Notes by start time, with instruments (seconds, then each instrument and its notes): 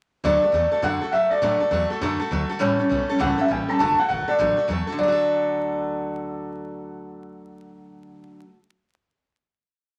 0.24 upright bass D2, steel-string acoustic guitar D3 F#3 A3 F#4 A4, clean electric guitar D5
0.42 steel-string acoustic guitar A3 F#4 A4
0.52 upright bass E2, steel-string acoustic guitar F#3 A3 F#4 A4
0.72 steel-string acoustic guitar A3 F#4 A4
0.82 upright bass F#2, steel-string acoustic guitar D3 F#3 A3 F#4 A4, clean electric guitar F#5
1.01 steel-string acoustic guitar A3 F#4 A4
1.12 upright bass G2, steel-string acoustic guitar F#3 A3 F#4 A4, clean electric guitar E5
1.30 steel-string acoustic guitar A3 F#4 A4, clean electric guitar D5, muted upright bass stroke
1.42 upright bass A2, steel-string acoustic guitar D3 F#3 A3 F#4 A4
1.60 steel-string acoustic guitar A3 F#4 A4, muted upright bass stroke
1.71 upright bass E2, steel-string acoustic guitar F#3 A3 F#4 A4
1.90 steel-string acoustic guitar A3 F#4 A4
2.01 upright bass F#2, steel-string acoustic guitar D3 F#3 A3 F#4 A4
2.20 steel-string acoustic guitar A3 F#4 A4
2.31 upright bass D2, steel-string acoustic guitar F#3 A3 F#4 A4
2.49 steel-string acoustic guitar A3 F#4 A4
2.59 upright bass A1, steel-string acoustic guitar A2 E3 G3 A3 C#4 A4, clean electric guitar C#5
2.79 steel-string acoustic guitar G3 A3 C#4 A4, muted upright bass stroke
2.89 upright bass B1, steel-string acoustic guitar G3 A3 C#4 A4
3.09 steel-string acoustic guitar G3 A3 C#4 A4
3.19 upright bass C#2, steel-string acoustic guitar A2 E3 G3 A3 C#4 A4, clean electric guitar F#5
3.38 steel-string acoustic guitar G3 A3 C#4 A4, clean electric guitar E5
3.48 upright bass A1, steel-string acoustic guitar G3 A3 C#4 A4, clean electric guitar G5
3.68 steel-string acoustic guitar G3 A3 C#4 A4, clean electric guitar A5, muted upright bass stroke
3.79 upright bass F#1, steel-string acoustic guitar D3 F#3 A3 F#4 A4, clean electric guitar A5
3.98 steel-string acoustic guitar A3 F#4 A4, clean electric guitar F#5
4.08 upright bass G1, steel-string acoustic guitar F#3 A3 F#4 A4, clean electric guitar F#5
4.28 steel-string acoustic guitar A3 F#4 A4, clean electric guitar D5, muted upright bass stroke
4.39 upright bass A1, steel-string acoustic guitar D3 F#3 A3 F#4 A4
4.57 steel-string acoustic guitar A3 F#4 A4
4.68 upright bass E2, steel-string acoustic guitar F#3 A3 F#4 A4
4.87 steel-string acoustic guitar A3 F#4 A4
4.92 steel-string acoustic guitar D3
4.98 upright bass D2, steel-string acoustic guitar F#3, clean electric guitar D5
5.03 steel-string acoustic guitar A3
5.08 steel-string acoustic guitar F#4
5.12 steel-string acoustic guitar A4